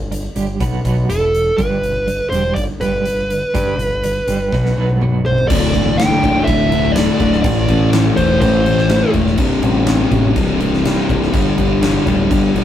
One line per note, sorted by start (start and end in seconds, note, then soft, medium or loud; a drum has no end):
0.00 0.28 G1 loud
0.11 0.33 G2 medium
0.11 0.33 D3 medium
0.11 closed hi-hat medium
0.35 0.56 G1 medium
0.35 0.59 G2 medium
0.35 0.59 D3 medium
0.35 0.59 G3 medium
0.35 closed hi-hat medium
0.60 0.81 B1 medium
0.60 0.83 B2 medium
0.60 0.83 F#3 medium
0.60 0.84 B3 loud
0.60 kick loud
0.60 closed hi-hat medium
0.84 1.05 B1 medium
0.84 1.07 B2 medium
0.84 1.08 F#3 medium
0.84 1.08 B3 loud
0.84 kick medium
0.84 closed hi-hat medium
1.09 1.50 E1 medium
1.09 1.32 E2 medium
1.09 1.32 B2 medium
1.09 1.32 E3 medium
1.09 1.55 A4 medium
1.09 closed hi-hat medium
1.34 1.56 E2 medium
1.34 1.56 B2 medium
1.34 closed hi-hat medium
1.57 2.20 G1 medium
1.57 1.81 G2 medium
1.57 1.81 D3 medium
1.57 1.82 G3 loud
1.57 2.29 B4 medium
1.57 kick loud
1.57 closed hi-hat medium
1.83 2.05 G2 medium
1.83 2.05 D3 medium
1.83 closed hi-hat medium
2.07 2.29 G2 medium
2.07 2.29 D3 medium
2.07 closed hi-hat medium
2.30 2.52 E1 medium
2.30 2.55 G2 medium
2.30 2.55 D3 medium
2.30 2.55 G3 medium
2.30 2.54 C5 medium
2.30 closed hi-hat medium
2.55 2.67 G1 medium
2.55 2.78 G2 medium
2.55 2.79 D3 medium
2.55 2.62 D5 loud
2.55 kick medium
2.55 closed hi-hat medium
2.81 3.42 G1 medium
2.81 3.04 G2 medium
2.81 3.04 D3 medium
2.81 3.04 G3 medium
2.81 4.97 B4 medium
2.81 kick medium
2.81 closed hi-hat medium
3.05 3.27 G2 medium
3.05 3.28 D3 medium
3.05 closed hi-hat medium
3.30 3.52 G2 medium
3.30 3.52 D3 medium
3.30 closed hi-hat medium
3.54 3.77 G2 medium
3.54 3.75 G2 loud
3.54 3.77 D3 medium
3.54 3.77 G3 loud
3.54 kick loud
3.54 closed hi-hat medium
3.78 4.19 G1 loud
3.78 4.01 G2 medium
3.78 4.01 D3 medium
3.78 closed hi-hat medium
4.04 4.25 G2 medium
4.04 4.26 D3 medium
4.04 closed hi-hat medium
4.27 4.48 G1 medium
4.27 4.51 G2 medium
4.27 4.51 D3 medium
4.27 4.51 G3 medium
4.27 closed hi-hat medium
4.52 4.73 B1 medium
4.52 4.75 B2 medium
4.52 4.76 F#3 medium
4.52 4.76 B3 medium
4.52 kick loud
4.52 snare soft
4.65 snare soft
4.77 4.97 B1 medium
4.77 5.00 B2 medium
4.77 5.00 F#3 medium
4.77 5.00 B3 medium
4.89 high tom medium
5.01 5.42 B1 medium
5.01 5.24 B2 medium
5.01 5.24 F#3 medium
5.01 5.25 B3 medium
5.01 mid tom medium
5.26 5.47 B2 medium
5.26 5.48 F#3 medium
5.26 5.48 C5 medium
5.26 floor tom medium
5.38 floor tom medium
5.48 5.70 D1 loud
5.48 5.72 D2 loud
5.48 5.73 A2 loud
5.48 5.73 D3 loud
5.48 5.99 D5 loud
5.48 kick loud
5.48 crash loud
5.48 crash medium
5.74 6.15 C1 loud
5.74 5.98 D2 medium
5.74 5.98 A2 medium
5.74 5.98 D3 loud
5.74 kick medium
5.74 crash medium
5.97 6.22 D2 medium
5.97 6.22 A2 loud
5.97 6.23 D3 loud
5.97 6.43 G5 loud
5.97 snare loud
5.97 crash medium
6.23 6.43 C1 medium
6.23 6.46 D2 medium
6.23 6.46 A2 medium
6.23 6.46 D3 loud
6.23 kick medium
6.23 crash medium
6.44 7.08 D1 loud
6.44 6.71 D2 medium
6.44 6.72 A2 loud
6.44 6.72 D3 loud
6.44 6.96 E5 loud
6.44 kick loud
6.44 crash medium
6.72 6.95 D2 medium
6.72 6.95 A2 medium
6.72 6.96 D3 loud
6.72 crash medium
6.92 7.41 D5 medium
6.92 crash medium
6.96 7.19 D2 medium
6.96 7.19 A2 loud
6.96 7.20 D3 loud
6.96 snare loud
7.20 7.40 D1 loud
7.20 7.43 D2 medium
7.20 7.43 A2 loud
7.20 7.43 D3 loud
7.20 kick medium
7.20 crash medium
7.32 snare soft
7.42 7.65 A1 loud
7.42 7.68 A2 loud
7.42 7.69 E3 loud
7.42 7.69 A3 loud
7.42 7.89 D5 medium
7.42 kick loud
7.42 crash loud
7.68 8.09 A1 loud
7.68 7.92 A2 medium
7.68 7.93 E3 medium
7.68 7.93 A3 medium
7.68 kick medium
7.68 crash medium
7.93 8.16 A2 medium
7.93 8.18 E3 loud
7.93 8.18 A3 loud
7.93 snare loud
7.93 crash medium
8.17 8.38 E1 medium
8.17 8.40 A2 medium
8.17 8.41 E3 medium
8.17 8.42 A3 loud
8.17 8.40 C5 loud
8.17 kick medium
8.17 crash medium
8.41 9.02 A1 loud
8.41 8.65 A2 loud
8.41 8.66 E3 loud
8.41 8.66 A3 loud
8.41 9.10 C5 loud
8.41 kick loud
8.41 crash medium
8.66 8.89 A2 medium
8.66 8.89 E3 loud
8.66 8.89 A3 loud
8.66 crash medium
8.78 snare soft
8.89 9.13 A2 loud
8.89 9.14 E3 loud
8.89 9.14 A3 loud
8.89 snare loud
8.89 crash medium
9.13 9.34 E1 loud
9.13 9.37 A2 medium
9.13 9.37 E3 loud
9.13 9.38 A3 loud
9.13 kick medium
9.13 crash medium
9.27 snare soft
9.38 9.59 C1 loud
9.38 9.62 C2 loud
9.38 9.63 G2 loud
9.38 9.63 C3 loud
9.38 kick loud
9.38 crash medium
9.62 10.04 A1 loud
9.62 9.87 C2 medium
9.62 9.87 G2 medium
9.62 9.88 C3 medium
9.62 kick medium
9.62 crash medium
9.87 10.11 C2 loud
9.87 10.11 G2 medium
9.87 10.11 C3 loud
9.87 snare loud
9.87 crash medium
10.11 10.32 A1 medium
10.11 10.35 C2 medium
10.11 10.35 G2 loud
10.11 10.35 C3 loud
10.11 kick medium
10.11 crash medium
10.36 10.97 C1 loud
10.36 10.59 C2 loud
10.36 10.59 G2 loud
10.36 10.60 C3 loud
10.36 kick loud
10.36 crash medium
10.60 10.83 C2 medium
10.60 10.83 G2 medium
10.60 10.84 C3 loud
10.60 crash medium
10.73 snare soft
10.84 11.07 C2 loud
10.84 11.08 G2 loud
10.84 11.08 C3 loud
10.84 snare loud
10.84 crash medium
11.09 11.29 C1 loud
11.09 11.32 C2 medium
11.09 11.31 G2 loud
11.09 11.32 C3 loud
11.09 kick medium
11.09 crash medium
11.22 snare soft
11.32 11.54 G1 loud
11.32 11.56 G2 loud
11.32 11.57 D3 loud
11.32 11.58 G3 loud
11.32 kick loud
11.32 crash medium
11.57 11.98 G1 medium
11.57 11.80 G2 medium
11.57 11.81 D3 medium
11.57 11.82 G3 medium
11.57 kick medium
11.57 crash medium
11.81 12.05 G2 loud
11.81 12.06 D3 loud
11.81 12.07 G3 medium
11.81 snare loud
11.81 crash medium
12.06 12.26 D1 loud
12.06 12.29 G2 loud
12.06 12.30 D3 loud
12.06 12.31 G3 medium
12.06 kick medium
12.06 crash medium
12.31 12.64 G1 loud
12.31 12.54 G2 loud
12.31 12.54 D3 medium
12.31 12.56 G3 loud
12.31 kick loud
12.31 crash medium
12.55 12.64 G2 medium
12.55 12.64 D3 loud
12.55 12.64 G3 loud
12.55 crash medium